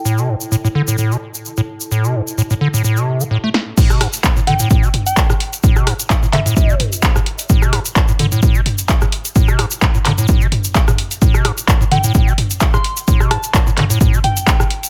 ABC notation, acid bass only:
X:1
M:4/4
L:1/16
Q:"Swing 16ths" 1/4=129
K:Am
V:1 name="Acid bass" clef=bass
A,, C, G,, z A,, A,, D, A,, A,, C, z3 A,, z2 | A,, C, G,, z A,, A,, D, A,, A,, C,2 E, A,, A, z2 | A,, C, G,, z A,, A,, D, A,, A,, C, z3 A,, z2 | A,, C, G,, z A,, A,, D, A,, z C, z3 A,, z2 |
A,, C, G,, z A,, A,, D, A,, z C, z3 A,, z2 | A,, C, G,, z A,, A,, D, A,, z C, z3 A,, z2 | A,, C, G,, z A,, A,, D, A,, A,, C, z3 A,, z2 | A,, C, G,, z A,, A,, D, A,, A,, C, z3 A,, z2 |]